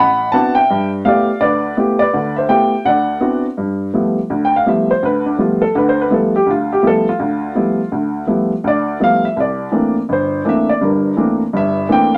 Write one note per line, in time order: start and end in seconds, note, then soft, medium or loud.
0.00 0.28 A1 medium
0.00 0.31 F#5 medium
0.00 0.30 B5 loud
0.32 0.57 B3 medium
0.32 0.57 C4 soft
0.32 0.57 D4 medium
0.32 0.57 E4 soft
0.32 0.57 F#4 medium
0.32 0.54 F#5 medium
0.32 0.53 A5 medium
0.55 0.89 E5 medium
0.55 0.88 G5 medium
0.70 1.00 G2 medium
1.05 1.29 A3 medium
1.05 1.29 B3 medium
1.05 1.29 E4 medium
1.05 1.29 F4 medium
1.05 1.29 G4 medium
1.05 1.39 D5 medium
1.05 1.42 F5 medium
1.41 1.72 D2 medium
1.41 1.75 B4 medium
1.41 1.74 D5 medium
1.77 2.01 A3 medium
1.77 2.01 B3 medium
1.77 2.01 E4 medium
1.77 2.01 F4 medium
1.77 2.01 G4 medium
1.99 2.36 B4 medium
1.99 2.34 D5 medium
2.13 2.44 D2 medium
2.13 2.44 D3 medium
2.36 2.49 C5 medium
2.36 2.49 E5 medium
2.49 2.73 A3 medium
2.49 2.73 B3 soft
2.49 2.73 E4 medium
2.49 2.73 F4 soft
2.49 2.73 G4 medium
2.49 2.83 E5 medium
2.49 2.86 G5 medium
2.85 3.16 D2 medium
2.85 3.41 D5 medium
2.85 3.40 F#5 medium
3.21 3.45 B3 medium
3.21 3.45 C4 soft
3.21 3.45 D4 medium
3.21 3.45 E4 soft
3.21 3.45 F#4 medium
3.58 3.89 G2 medium
3.93 4.17 F3 soft
3.93 4.18 G3 soft
3.93 4.18 A3 soft
3.93 4.18 B3 soft
3.93 4.18 E4 medium
4.30 4.61 D2 medium
4.45 4.55 G5 medium
4.56 4.67 F5 medium
4.66 4.90 F3 medium
4.66 4.90 G3 soft
4.66 4.90 A3 soft
4.66 4.90 B3 soft
4.66 4.90 E4 medium
4.66 4.89 E5 medium
4.91 5.03 C5 medium
5.03 5.33 D2 medium
5.03 5.26 B4 medium
5.26 5.38 D4 medium
5.38 5.62 F3 medium
5.38 5.62 G3 soft
5.38 5.62 A3 soft
5.38 5.62 B3 soft
5.38 5.62 E4 medium
5.38 5.61 F4 medium
5.62 5.74 A4 medium
5.75 6.06 D2 medium
5.75 6.06 D3 medium
5.75 5.88 B4 medium
5.89 5.99 C5 medium
6.01 6.12 B4 medium
6.10 6.34 F3 medium
6.10 6.34 G3 medium
6.10 6.34 A3 soft
6.10 6.35 B3 soft
6.10 6.35 E4 medium
6.10 6.34 A4 medium
6.36 6.48 G4 medium
6.46 6.78 D2 medium
6.51 6.71 F4 medium
6.72 6.84 G4 medium
6.83 7.07 F3 medium
6.83 7.07 G3 soft
6.83 7.07 A3 medium
6.83 7.07 B3 soft
6.83 7.07 E4 medium
6.87 7.07 A4 loud
7.09 7.89 F4 medium
7.19 7.50 D2 medium
7.55 7.79 F3 soft
7.55 7.79 G3 medium
7.55 7.79 A3 soft
7.55 7.79 B3 medium
7.55 7.80 E4 medium
7.92 8.23 D2 medium
8.27 8.51 F3 medium
8.27 8.51 G3 soft
8.27 8.52 A3 soft
8.27 8.52 B3 medium
8.27 8.52 E4 medium
8.64 8.95 D2 medium
8.64 8.99 D5 medium
9.00 9.24 F3 medium
9.00 9.24 G3 soft
9.00 9.24 A3 soft
9.00 9.24 B3 soft
9.00 9.24 E4 medium
9.00 9.24 F5 medium
9.25 9.37 E5 medium
9.36 9.67 C2 medium
9.40 9.93 D5 medium
9.72 9.96 E3 medium
9.72 9.96 A3 medium
9.72 9.96 A#3 soft
9.72 9.96 C4 soft
9.72 9.97 D4 medium
10.09 10.40 G1 medium
10.09 10.44 C5 medium
10.45 10.69 E3 medium
10.45 10.69 A3 medium
10.45 10.69 A#3 medium
10.45 10.69 C4 soft
10.45 10.69 D4 medium
10.49 10.69 E5 medium
10.69 10.81 D5 medium
10.81 11.12 G1 medium
10.81 11.12 G2 medium
10.81 11.37 A#4 medium
11.17 11.41 E3 medium
11.17 11.41 A3 medium
11.17 11.41 A#3 soft
11.17 11.41 C4 soft
11.17 11.41 D4 medium
11.53 11.84 G1 medium
11.53 11.84 G2 medium
11.53 11.88 E5 medium
11.89 12.13 E3 medium
11.89 12.13 A3 medium
11.89 12.13 A#3 medium
11.89 12.13 C4 medium
11.89 12.13 D4 medium
11.89 12.13 G5 medium
12.15 12.18 F5 medium